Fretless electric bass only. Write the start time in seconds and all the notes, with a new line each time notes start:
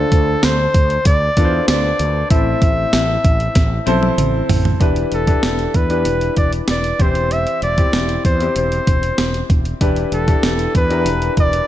0.12 D2
0.44 D2
0.74 D2
1.06 D2
1.37 E2
1.68 D2
2.00 D2
2.31 A1
2.62 A1
2.93 A1
3.24 A1
3.56 A1
3.87 B1
4.18 A1
4.49 A1
4.81 E1
5.12 E1
5.43 E1
5.74 E2
6.06 E1
6.37 E1
6.69 E1
6.99 E1
7.62 E1
7.93 E1
8.25 E2
8.56 E1
8.87 E1
9.19 E1
9.50 E1
9.81 E1
10.12 E1
10.43 E1
10.75 E2
11.05 E1
11.37 E1